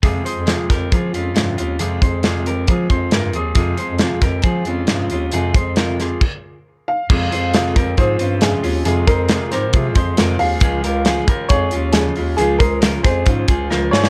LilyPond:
<<
  \new Staff \with { instrumentName = "Upright piano" } { \time 4/4 \key f \minor \tempo 4 = 136 r1 | r1 | r1 | r2. r8 f''8~ |
f''2 c''4 aes'4 | aes'8 bes'4 c''2 f''8~ | f''2 des''4 aes'4 | aes'8 bes'4 c''2 des''8 | }
  \new Staff \with { instrumentName = "Clean electric guitar" } { \time 4/4 \key f \minor <f' aes'>8 <aes' c''>8 <f' aes'>8 <g' bes'>8 <f' aes'>8 <des' f'>4 <des' f'>8 | <f' aes'>8 <aes' c''>8 <f' aes'>8 <g' bes'>8 <f' aes'>8 <aes' c''>8 <f' bes'>8 <f' aes'>8 | <f' aes'>8 <aes' c''>8 <f' aes'>8 <g' bes'>8 <f' aes'>8 <des' f'>4 <des' f'>8 | <f' aes'>8 <aes' c''>8 <f' bes'>8 <f' aes'>8 r2 |
<f' aes'>8 <aes' c''>8 <f' aes'>8 <g' bes'>8 <f' aes'>8 <des' f'>4 <des' f'>8 | <f' aes'>8 <aes' c''>8 <f' aes'>8 <g' bes'>8 <f' aes'>8 <aes' c''>8 <f' bes'>8 <f' aes'>8 | <f' aes'>8 <g' bes'>8 <f' aes'>8 <g' bes'>8 <f' aes'>8 <des' f'>4 <des' f'>8 | <f' aes'>8 <aes' c''>8 <f' bes'>8 <f' aes'>8 <des' f'>8 <f' aes'>8 <f' bes'>8 <f' aes'>8 | }
  \new Staff \with { instrumentName = "Steel-string acoustic guitar" } { \clef bass \time 4/4 \key f \minor <f, c f aes c' f'>8 <f aes c' f'>8 <f, c f aes c' f'>8 <f aes c' f'>8 <f aes c' f'>8 <f aes c' f'>8 <f, c f aes c' f'>8 <f aes c' f'>8 | <f, c f aes c' f'>8 <f aes c' f'>8 <f, c f aes c' f'>8 <f aes c' f'>8 <f aes c' f'>8 <f aes c' f'>8 <f, c f aes c' f'>8 <f aes c' f'>8 | <f, c f aes c' f'>8 <f aes c' f'>8 <f, c f aes c' f'>8 <f aes c'>8 <f aes c' f'>8 <f aes c' f'>8 <f, c f aes c' f'>8 <f aes c' f'>8 | <f, c f aes c' f'>8 <f aes c' f'>8 <f, c f aes c' f'>8 <f aes c' f'>8 r2 |
<f, c f aes c' f'>8 <f aes c' f'>8 <f, c f aes c' f'>8 <f aes c' f'>8 <f aes c' f'>8 <f aes c' f'>8 <f, c f aes c' f'>8 <f aes c' f'>8 | <f, c f aes c' f'>8 <f aes c' f'>8 <f, c f aes c' f'>8 <f aes c' f'>8 <f aes c' f'>8 <f aes c' f'>8 <f, c f aes c' f'>8 <f aes c' f'>8 | <des f aes des' f'>8 <aes des' f'>8 <des f aes des' f'>8 <aes des' f'>8 <f aes des' f'>8 <aes des' f'>8 <des f aes des' f'>8 <aes des' f'>8 | <des f aes des' f'>8 <aes des'>8 <des f aes des' f'>8 <aes des' f'>8 <f aes des' f'>8 <aes des' f'>8 <des f aes des' f'>8 <aes f'>8 | }
  \new Staff \with { instrumentName = "Bass clarinet" } { \clef bass \time 4/4 \key f \minor f,8 r16 f,8 r16 f,8 f8 f,8 g,8 ees,8 | f,8 f,4. f8 f,8 g,8 ees,8 | f,8 r16 f,8 r16 f,8 f8 f,8 g,8 ees,8 | f,8 f,4. r2 |
f,8 f,4. aes,8 g,4 ees,8 | f,8 f,4 aes,8 c8 f,8 f,8 ees,8 | des,8 des,4 r8 f,8 ees,4 ees,8 | des,8 des,4 f,8 aes,8 des,8 des,8 g,8 | }
  \new DrumStaff \with { instrumentName = "Drums" } \drummode { \time 4/4 <hh bd>8 hh8 <hh sn>8 <hh bd sn>8 <hh bd>8 hh8 <hh sn>8 hh8 | hh8 <hh bd>8 <hh sn>8 hh8 <hh bd>8 <hh bd>8 <hh sn>8 hh8 | <hh bd>8 hh8 <hh sn>8 <hh bd sn>8 <hh bd>8 hh8 <hh sn>8 hh8 | hh8 <hh bd>8 <hh sn>8 <hh sn>8 <cymc bd>4 r4 |
<cymc bd>8 hh8 <hh sn>8 <hh bd>8 <hh bd>8 hh8 <hh sn>8 hho8 | hh8 <hh bd>8 <hh sn>8 <hh sn>8 <hh bd>8 <hh bd>8 <hh sn>8 hho8 | <hh bd>8 hh8 <hh sn>8 <hh bd>8 <hh bd>8 hh8 <hh sn>8 hho8 | hh8 <hh bd>8 <hh sn>8 <hh bd sn>8 <hh bd>8 <hh bd>8 sn8 sn16 sn16 | }
>>